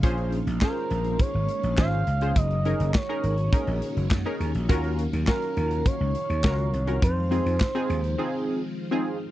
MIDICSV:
0, 0, Header, 1, 6, 480
1, 0, Start_track
1, 0, Key_signature, -5, "minor"
1, 0, Tempo, 582524
1, 28, Time_signature, 4, 2, 24, 8
1, 7674, End_track
2, 0, Start_track
2, 0, Title_t, "Analog synth lead"
2, 0, Program_c, 0, 81
2, 513, Note_on_c, 0, 70, 96
2, 993, Note_on_c, 0, 73, 107
2, 1005, Note_off_c, 0, 70, 0
2, 1466, Note_off_c, 0, 73, 0
2, 1471, Note_on_c, 0, 77, 113
2, 1952, Note_on_c, 0, 75, 110
2, 1965, Note_off_c, 0, 77, 0
2, 2434, Note_on_c, 0, 73, 99
2, 2447, Note_off_c, 0, 75, 0
2, 3631, Note_off_c, 0, 73, 0
2, 4351, Note_on_c, 0, 70, 104
2, 4832, Note_on_c, 0, 73, 121
2, 4844, Note_off_c, 0, 70, 0
2, 5790, Note_off_c, 0, 73, 0
2, 5795, Note_on_c, 0, 72, 111
2, 7199, Note_off_c, 0, 72, 0
2, 7674, End_track
3, 0, Start_track
3, 0, Title_t, "Analog polysynth"
3, 0, Program_c, 1, 90
3, 26, Note_on_c, 1, 61, 104
3, 28, Note_on_c, 1, 65, 91
3, 29, Note_on_c, 1, 68, 93
3, 31, Note_on_c, 1, 72, 111
3, 309, Note_off_c, 1, 61, 0
3, 309, Note_off_c, 1, 65, 0
3, 310, Note_off_c, 1, 68, 0
3, 311, Note_off_c, 1, 72, 0
3, 504, Note_on_c, 1, 61, 76
3, 508, Note_on_c, 1, 65, 70
3, 509, Note_on_c, 1, 68, 71
3, 512, Note_on_c, 1, 72, 85
3, 1070, Note_off_c, 1, 61, 0
3, 1071, Note_off_c, 1, 65, 0
3, 1072, Note_off_c, 1, 68, 0
3, 1073, Note_off_c, 1, 72, 0
3, 1465, Note_on_c, 1, 61, 87
3, 1466, Note_on_c, 1, 65, 77
3, 1469, Note_on_c, 1, 68, 76
3, 1471, Note_on_c, 1, 72, 92
3, 1677, Note_off_c, 1, 61, 0
3, 1678, Note_off_c, 1, 65, 0
3, 1680, Note_off_c, 1, 68, 0
3, 1681, Note_off_c, 1, 72, 0
3, 1826, Note_on_c, 1, 61, 73
3, 1828, Note_on_c, 1, 65, 73
3, 1830, Note_on_c, 1, 68, 71
3, 1832, Note_on_c, 1, 72, 84
3, 1941, Note_off_c, 1, 61, 0
3, 1943, Note_off_c, 1, 65, 0
3, 1945, Note_off_c, 1, 68, 0
3, 1948, Note_off_c, 1, 72, 0
3, 2186, Note_on_c, 1, 61, 76
3, 2188, Note_on_c, 1, 63, 75
3, 2191, Note_on_c, 1, 68, 76
3, 2192, Note_on_c, 1, 70, 85
3, 2398, Note_off_c, 1, 61, 0
3, 2399, Note_off_c, 1, 63, 0
3, 2400, Note_off_c, 1, 68, 0
3, 2401, Note_off_c, 1, 70, 0
3, 2547, Note_on_c, 1, 61, 80
3, 2549, Note_on_c, 1, 63, 78
3, 2550, Note_on_c, 1, 68, 76
3, 2552, Note_on_c, 1, 70, 95
3, 2758, Note_off_c, 1, 61, 0
3, 2759, Note_off_c, 1, 63, 0
3, 2760, Note_off_c, 1, 68, 0
3, 2761, Note_off_c, 1, 70, 0
3, 2905, Note_on_c, 1, 61, 71
3, 2907, Note_on_c, 1, 63, 68
3, 2909, Note_on_c, 1, 68, 67
3, 2913, Note_on_c, 1, 70, 78
3, 3259, Note_off_c, 1, 61, 0
3, 3260, Note_off_c, 1, 63, 0
3, 3260, Note_off_c, 1, 68, 0
3, 3262, Note_off_c, 1, 70, 0
3, 3506, Note_on_c, 1, 61, 87
3, 3508, Note_on_c, 1, 63, 84
3, 3510, Note_on_c, 1, 68, 82
3, 3512, Note_on_c, 1, 70, 99
3, 3718, Note_off_c, 1, 61, 0
3, 3719, Note_off_c, 1, 63, 0
3, 3720, Note_off_c, 1, 68, 0
3, 3721, Note_off_c, 1, 70, 0
3, 3863, Note_on_c, 1, 61, 102
3, 3865, Note_on_c, 1, 65, 95
3, 3868, Note_on_c, 1, 66, 98
3, 3869, Note_on_c, 1, 70, 117
3, 4147, Note_off_c, 1, 61, 0
3, 4148, Note_off_c, 1, 65, 0
3, 4149, Note_off_c, 1, 66, 0
3, 4150, Note_off_c, 1, 70, 0
3, 4344, Note_on_c, 1, 61, 78
3, 4346, Note_on_c, 1, 65, 70
3, 4349, Note_on_c, 1, 66, 72
3, 4350, Note_on_c, 1, 70, 85
3, 4909, Note_off_c, 1, 61, 0
3, 4910, Note_off_c, 1, 65, 0
3, 4912, Note_off_c, 1, 66, 0
3, 4912, Note_off_c, 1, 70, 0
3, 5305, Note_on_c, 1, 61, 86
3, 5308, Note_on_c, 1, 65, 75
3, 5311, Note_on_c, 1, 66, 77
3, 5313, Note_on_c, 1, 70, 95
3, 5518, Note_off_c, 1, 61, 0
3, 5519, Note_off_c, 1, 65, 0
3, 5520, Note_off_c, 1, 66, 0
3, 5522, Note_off_c, 1, 70, 0
3, 5663, Note_on_c, 1, 61, 76
3, 5665, Note_on_c, 1, 65, 69
3, 5668, Note_on_c, 1, 66, 69
3, 5671, Note_on_c, 1, 70, 85
3, 5779, Note_off_c, 1, 61, 0
3, 5780, Note_off_c, 1, 65, 0
3, 5783, Note_off_c, 1, 66, 0
3, 5786, Note_off_c, 1, 70, 0
3, 6023, Note_on_c, 1, 60, 82
3, 6026, Note_on_c, 1, 63, 75
3, 6028, Note_on_c, 1, 65, 73
3, 6030, Note_on_c, 1, 68, 91
3, 6237, Note_off_c, 1, 60, 0
3, 6238, Note_off_c, 1, 63, 0
3, 6239, Note_off_c, 1, 65, 0
3, 6240, Note_off_c, 1, 68, 0
3, 6384, Note_on_c, 1, 60, 98
3, 6385, Note_on_c, 1, 63, 90
3, 6388, Note_on_c, 1, 65, 89
3, 6390, Note_on_c, 1, 68, 114
3, 6597, Note_off_c, 1, 60, 0
3, 6598, Note_off_c, 1, 63, 0
3, 6599, Note_off_c, 1, 65, 0
3, 6600, Note_off_c, 1, 68, 0
3, 6743, Note_on_c, 1, 60, 86
3, 6745, Note_on_c, 1, 63, 81
3, 6747, Note_on_c, 1, 65, 77
3, 6749, Note_on_c, 1, 68, 101
3, 7097, Note_off_c, 1, 60, 0
3, 7098, Note_off_c, 1, 63, 0
3, 7099, Note_off_c, 1, 65, 0
3, 7100, Note_off_c, 1, 68, 0
3, 7343, Note_on_c, 1, 60, 95
3, 7346, Note_on_c, 1, 63, 82
3, 7349, Note_on_c, 1, 65, 86
3, 7351, Note_on_c, 1, 68, 101
3, 7557, Note_off_c, 1, 60, 0
3, 7558, Note_off_c, 1, 63, 0
3, 7559, Note_off_c, 1, 65, 0
3, 7561, Note_off_c, 1, 68, 0
3, 7674, End_track
4, 0, Start_track
4, 0, Title_t, "String machine"
4, 0, Program_c, 2, 50
4, 0, Note_on_c, 2, 51, 81
4, 0, Note_on_c, 2, 56, 73
4, 0, Note_on_c, 2, 77, 82
4, 28, Note_on_c, 2, 58, 70
4, 28, Note_on_c, 2, 61, 70
4, 1915, Note_off_c, 2, 51, 0
4, 1915, Note_off_c, 2, 77, 0
4, 1928, Note_off_c, 2, 61, 0
4, 1947, Note_on_c, 2, 51, 75
4, 1947, Note_on_c, 2, 61, 71
4, 1948, Note_on_c, 2, 66, 91
4, 3835, Note_off_c, 2, 56, 0
4, 3849, Note_off_c, 2, 66, 0
4, 3866, Note_on_c, 2, 77, 87
4, 3868, Note_on_c, 2, 54, 68
4, 5755, Note_off_c, 2, 58, 0
4, 5755, Note_off_c, 2, 61, 0
4, 5769, Note_off_c, 2, 54, 0
4, 5791, Note_on_c, 2, 56, 71
4, 5791, Note_on_c, 2, 60, 68
4, 5792, Note_on_c, 2, 53, 71
4, 7674, Note_off_c, 2, 51, 0
4, 7674, Note_off_c, 2, 53, 0
4, 7674, Note_off_c, 2, 56, 0
4, 7674, Note_off_c, 2, 60, 0
4, 7674, Note_off_c, 2, 77, 0
4, 7674, End_track
5, 0, Start_track
5, 0, Title_t, "Slap bass"
5, 0, Program_c, 3, 36
5, 27, Note_on_c, 3, 34, 101
5, 327, Note_off_c, 3, 34, 0
5, 386, Note_on_c, 3, 34, 96
5, 487, Note_off_c, 3, 34, 0
5, 747, Note_on_c, 3, 34, 85
5, 948, Note_off_c, 3, 34, 0
5, 1108, Note_on_c, 3, 32, 87
5, 1208, Note_off_c, 3, 32, 0
5, 1347, Note_on_c, 3, 34, 90
5, 1447, Note_off_c, 3, 34, 0
5, 1465, Note_on_c, 3, 32, 85
5, 1667, Note_off_c, 3, 32, 0
5, 1706, Note_on_c, 3, 37, 79
5, 1907, Note_off_c, 3, 37, 0
5, 1945, Note_on_c, 3, 30, 104
5, 2246, Note_off_c, 3, 30, 0
5, 2308, Note_on_c, 3, 30, 91
5, 2408, Note_off_c, 3, 30, 0
5, 2667, Note_on_c, 3, 32, 86
5, 2867, Note_off_c, 3, 32, 0
5, 3028, Note_on_c, 3, 34, 92
5, 3128, Note_off_c, 3, 34, 0
5, 3268, Note_on_c, 3, 30, 93
5, 3368, Note_off_c, 3, 30, 0
5, 3388, Note_on_c, 3, 42, 98
5, 3488, Note_off_c, 3, 42, 0
5, 3627, Note_on_c, 3, 39, 86
5, 3728, Note_off_c, 3, 39, 0
5, 3748, Note_on_c, 3, 34, 79
5, 3848, Note_off_c, 3, 34, 0
5, 3868, Note_on_c, 3, 39, 106
5, 4168, Note_off_c, 3, 39, 0
5, 4229, Note_on_c, 3, 39, 89
5, 4328, Note_off_c, 3, 39, 0
5, 4589, Note_on_c, 3, 39, 86
5, 4789, Note_off_c, 3, 39, 0
5, 4948, Note_on_c, 3, 37, 92
5, 5048, Note_off_c, 3, 37, 0
5, 5188, Note_on_c, 3, 39, 84
5, 5288, Note_off_c, 3, 39, 0
5, 5308, Note_on_c, 3, 37, 96
5, 5508, Note_off_c, 3, 37, 0
5, 5549, Note_on_c, 3, 36, 89
5, 5749, Note_off_c, 3, 36, 0
5, 5788, Note_on_c, 3, 41, 103
5, 6089, Note_off_c, 3, 41, 0
5, 6147, Note_on_c, 3, 41, 82
5, 6247, Note_off_c, 3, 41, 0
5, 6507, Note_on_c, 3, 39, 74
5, 6707, Note_off_c, 3, 39, 0
5, 7674, End_track
6, 0, Start_track
6, 0, Title_t, "Drums"
6, 26, Note_on_c, 9, 42, 89
6, 27, Note_on_c, 9, 36, 113
6, 109, Note_off_c, 9, 36, 0
6, 109, Note_off_c, 9, 42, 0
6, 147, Note_on_c, 9, 42, 33
6, 229, Note_off_c, 9, 42, 0
6, 267, Note_on_c, 9, 42, 77
6, 349, Note_off_c, 9, 42, 0
6, 389, Note_on_c, 9, 42, 56
6, 472, Note_off_c, 9, 42, 0
6, 501, Note_on_c, 9, 39, 92
6, 508, Note_on_c, 9, 38, 121
6, 509, Note_on_c, 9, 36, 103
6, 584, Note_off_c, 9, 39, 0
6, 591, Note_off_c, 9, 38, 0
6, 592, Note_off_c, 9, 36, 0
6, 745, Note_on_c, 9, 42, 70
6, 828, Note_off_c, 9, 42, 0
6, 861, Note_on_c, 9, 42, 51
6, 943, Note_off_c, 9, 42, 0
6, 983, Note_on_c, 9, 42, 73
6, 985, Note_on_c, 9, 36, 115
6, 1065, Note_off_c, 9, 42, 0
6, 1067, Note_off_c, 9, 36, 0
6, 1224, Note_on_c, 9, 42, 72
6, 1306, Note_off_c, 9, 42, 0
6, 1347, Note_on_c, 9, 42, 45
6, 1429, Note_off_c, 9, 42, 0
6, 1460, Note_on_c, 9, 39, 91
6, 1466, Note_on_c, 9, 36, 113
6, 1467, Note_on_c, 9, 38, 110
6, 1542, Note_off_c, 9, 39, 0
6, 1548, Note_off_c, 9, 36, 0
6, 1550, Note_off_c, 9, 38, 0
6, 1706, Note_on_c, 9, 42, 65
6, 1788, Note_off_c, 9, 42, 0
6, 1822, Note_on_c, 9, 42, 55
6, 1904, Note_off_c, 9, 42, 0
6, 1943, Note_on_c, 9, 42, 86
6, 1945, Note_on_c, 9, 36, 112
6, 2026, Note_off_c, 9, 42, 0
6, 2028, Note_off_c, 9, 36, 0
6, 2065, Note_on_c, 9, 42, 34
6, 2148, Note_off_c, 9, 42, 0
6, 2187, Note_on_c, 9, 42, 75
6, 2269, Note_off_c, 9, 42, 0
6, 2308, Note_on_c, 9, 42, 59
6, 2391, Note_off_c, 9, 42, 0
6, 2421, Note_on_c, 9, 39, 89
6, 2429, Note_on_c, 9, 36, 104
6, 2429, Note_on_c, 9, 38, 117
6, 2504, Note_off_c, 9, 39, 0
6, 2511, Note_off_c, 9, 36, 0
6, 2511, Note_off_c, 9, 38, 0
6, 2667, Note_on_c, 9, 42, 69
6, 2749, Note_off_c, 9, 42, 0
6, 2782, Note_on_c, 9, 42, 47
6, 2864, Note_off_c, 9, 42, 0
6, 2905, Note_on_c, 9, 42, 76
6, 2906, Note_on_c, 9, 36, 118
6, 2988, Note_off_c, 9, 36, 0
6, 2988, Note_off_c, 9, 42, 0
6, 3028, Note_on_c, 9, 42, 36
6, 3110, Note_off_c, 9, 42, 0
6, 3148, Note_on_c, 9, 42, 71
6, 3230, Note_off_c, 9, 42, 0
6, 3271, Note_on_c, 9, 42, 44
6, 3354, Note_off_c, 9, 42, 0
6, 3383, Note_on_c, 9, 39, 96
6, 3388, Note_on_c, 9, 36, 107
6, 3391, Note_on_c, 9, 38, 116
6, 3466, Note_off_c, 9, 39, 0
6, 3470, Note_off_c, 9, 36, 0
6, 3473, Note_off_c, 9, 38, 0
6, 3630, Note_on_c, 9, 42, 68
6, 3712, Note_off_c, 9, 42, 0
6, 3747, Note_on_c, 9, 42, 55
6, 3829, Note_off_c, 9, 42, 0
6, 3868, Note_on_c, 9, 36, 115
6, 3868, Note_on_c, 9, 42, 88
6, 3950, Note_off_c, 9, 36, 0
6, 3950, Note_off_c, 9, 42, 0
6, 3988, Note_on_c, 9, 42, 35
6, 4070, Note_off_c, 9, 42, 0
6, 4109, Note_on_c, 9, 42, 73
6, 4192, Note_off_c, 9, 42, 0
6, 4230, Note_on_c, 9, 42, 61
6, 4313, Note_off_c, 9, 42, 0
6, 4342, Note_on_c, 9, 39, 94
6, 4350, Note_on_c, 9, 36, 101
6, 4350, Note_on_c, 9, 38, 120
6, 4425, Note_off_c, 9, 39, 0
6, 4432, Note_off_c, 9, 38, 0
6, 4433, Note_off_c, 9, 36, 0
6, 4466, Note_on_c, 9, 42, 35
6, 4548, Note_off_c, 9, 42, 0
6, 4588, Note_on_c, 9, 42, 67
6, 4670, Note_off_c, 9, 42, 0
6, 4705, Note_on_c, 9, 42, 46
6, 4787, Note_off_c, 9, 42, 0
6, 4826, Note_on_c, 9, 42, 79
6, 4827, Note_on_c, 9, 36, 111
6, 4908, Note_off_c, 9, 42, 0
6, 4909, Note_off_c, 9, 36, 0
6, 5067, Note_on_c, 9, 42, 69
6, 5149, Note_off_c, 9, 42, 0
6, 5191, Note_on_c, 9, 42, 44
6, 5273, Note_off_c, 9, 42, 0
6, 5304, Note_on_c, 9, 39, 97
6, 5308, Note_on_c, 9, 36, 109
6, 5311, Note_on_c, 9, 38, 110
6, 5386, Note_off_c, 9, 39, 0
6, 5390, Note_off_c, 9, 36, 0
6, 5394, Note_off_c, 9, 38, 0
6, 5425, Note_on_c, 9, 42, 36
6, 5507, Note_off_c, 9, 42, 0
6, 5551, Note_on_c, 9, 42, 64
6, 5633, Note_off_c, 9, 42, 0
6, 5665, Note_on_c, 9, 42, 57
6, 5748, Note_off_c, 9, 42, 0
6, 5787, Note_on_c, 9, 42, 86
6, 5788, Note_on_c, 9, 36, 112
6, 5869, Note_off_c, 9, 42, 0
6, 5870, Note_off_c, 9, 36, 0
6, 6029, Note_on_c, 9, 42, 77
6, 6111, Note_off_c, 9, 42, 0
6, 6151, Note_on_c, 9, 42, 56
6, 6233, Note_off_c, 9, 42, 0
6, 6263, Note_on_c, 9, 39, 97
6, 6270, Note_on_c, 9, 36, 108
6, 6270, Note_on_c, 9, 38, 117
6, 6345, Note_off_c, 9, 39, 0
6, 6352, Note_off_c, 9, 38, 0
6, 6353, Note_off_c, 9, 36, 0
6, 6508, Note_on_c, 9, 42, 70
6, 6590, Note_off_c, 9, 42, 0
6, 6624, Note_on_c, 9, 42, 47
6, 6707, Note_off_c, 9, 42, 0
6, 7674, End_track
0, 0, End_of_file